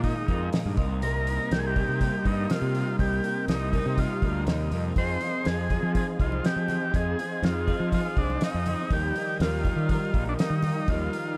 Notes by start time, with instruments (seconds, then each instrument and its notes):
Already playing: fingered electric bass A#2, clean electric guitar A#2 D#3, tonewheel organ F5 G#5 A#5 D#6
0.04 clean electric guitar G#3 D#4 F4 A#4, transistor combo organ D#4, kick, open hi-hat
0.28 fingered electric bass F2, clean electric guitar G#3 D#4 F4 A#4, kick, open hi-hat
0.53 clean electric guitar A#2 D#3 G#3 D#4 F4 A#4, snare, open hi-hat
0.65 fingered electric bass G2
0.77 fingered electric bass C2, clean electric guitar C3 G3 A#3 D#4 A#4, tonewheel organ G5 C6 D#6, kick, open hi-hat
1.02 clean electric guitar C3 G3 A#3 D#4 A#4, transistor combo organ A#4, open hi-hat
1.27 clean electric guitar A#3 D#4 A#4, open hi-hat
1.51 fingered electric bass C2, clean electric guitar G3 A#3 D#4 A#4, transistor combo organ G4, snare, open hi-hat
1.59 transistor combo organ G#4
1.67 transistor combo organ G4
1.76 clean electric guitar C3 G3 A#3 D#4 A#4, kick, open hi-hat
1.89 fingered electric bass C3
2.00 clean electric guitar G3 A#3 D#4 A#4, transistor combo organ G4, kick, open hi-hat
2.25 fingered electric bass G2, clean electric guitar A#3 D#4 A#4, transistor combo organ D#4, kick, open hi-hat
2.50 clean electric guitar C3 G3 A#3 D#4 A#4, transistor combo organ F4, snare, open hi-hat
2.62 fingered electric bass C3
2.74 clean electric guitar A#3 D#4 A#4, open hi-hat
2.99 fingered electric bass C2, clean electric guitar C3 G3 A#3 D#4 A#4, transistor combo organ G4, kick, open hi-hat
3.24 clean electric guitar A#3 D#4 A#4, open hi-hat
3.48 fingered electric bass C2, clean electric guitar G3 A#3 D#4 A#4, transistor combo organ D#4, snare, open hi-hat
3.73 clean electric guitar C3 G3 A#3 D#4 A#4, kick, open hi-hat
3.86 fingered electric bass C3
3.98 clean electric guitar G3 A#3 D#4 A#4, transistor combo organ F4, kick, open hi-hat
4.22 fingered electric bass D2, clean electric guitar A#3 D#4 A#4, kick, open hi-hat
4.47 fingered electric bass D#2, clean electric guitar C3 G3 A#3 D#4 A#4, snare, open hi-hat
4.71 fingered electric bass F2, clean electric guitar A#3 D#4 A#4, open hi-hat
4.96 fingered electric bass F2, clean electric guitar F3 C4 D#4 G#4, transistor combo organ C5, tonewheel organ D#5 F5, kick, open hi-hat
5.21 clean electric guitar C4 D#4 G#4, open hi-hat
5.45 fingered electric bass F2, clean electric guitar F3 C4 D#4 G#4, transistor combo organ G#4, snare, open hi-hat, high conga
5.70 clean electric guitar F3 C4 D#4 G#4, kick, open hi-hat, high conga, low conga
5.83 fingered electric bass F3
5.95 clean electric guitar F3 C4 D#4 G#4, transistor combo organ G#4, kick, open hi-hat, high conga
6.19 fingered electric bass C2, clean electric guitar C4 D#4 G#4, transistor combo organ F4, kick, open hi-hat
6.32 high conga
6.44 clean electric guitar F3 C4 D#4 G#4, transistor combo organ G4, snare, open hi-hat
6.56 fingered electric bass F3
6.68 clean electric guitar C4 D#4 G#4, open hi-hat, high conga, low conga
6.93 fingered electric bass F2, clean electric guitar F3 C4 D#4 G#4, transistor combo organ G#4, kick, open hi-hat
7.18 clean electric guitar C4 D#4 G#4, open hi-hat
7.42 fingered electric bass F2, clean electric guitar F3 C4 D#4 G#4, transistor combo organ F4, snare, open hi-hat, high conga
7.67 clean electric guitar F3 C4 D#4 G#4, kick, open hi-hat, high conga
7.80 fingered electric bass F3
7.91 clean electric guitar F3 C4 D#4 G#4, transistor combo organ F4, kick, open hi-hat, high conga
8.16 fingered electric bass C2, clean electric guitar C4 D#4 G#4, transistor combo organ D4, kick, open hi-hat
8.30 high conga
8.41 clean electric guitar F3 C4 D#4 G#4, transistor combo organ D#4, snare, open hi-hat
8.54 fingered electric bass F2
8.65 clean electric guitar C4 D#4 G#4, open hi-hat, high conga, low conga
8.90 fingered electric bass D#2, clean electric guitar D#3 F3 G3 D#4 A#4, transistor combo organ G4, tonewheel organ F5 G5 A#5, kick, open hi-hat
9.15 clean electric guitar G3 D#4 A#4, open hi-hat
9.39 fingered electric bass D#2, clean electric guitar F3 G3 D#4 A#4, transistor combo organ F4, snare, open hi-hat, high conga
9.63 clean electric guitar D#3 F3 G3 D#4 A#4, kick, open hi-hat, high conga, low conga
9.76 fingered electric bass D#3
9.89 clean electric guitar F3 G3 D#4 A#4, transistor combo organ F4, kick, open hi-hat, high conga
10.13 fingered electric bass A#1, clean electric guitar G3 D#4 A#4, kick, open hi-hat
10.26 transistor combo organ D4, high conga
10.37 clean electric guitar D#3 F3 G3 D#4 A#4, transistor combo organ D#4, snare, open hi-hat
10.50 fingered electric bass D#3
10.63 clean electric guitar G3 D#4 A#4, open hi-hat, high conga, low conga
10.88 fingered electric bass D#2, clean electric guitar D#3 F3 G3 D#4 A#4, transistor combo organ F4, tonewheel organ F6, kick, open hi-hat
11.12 clean electric guitar G3 D#4 A#4, open hi-hat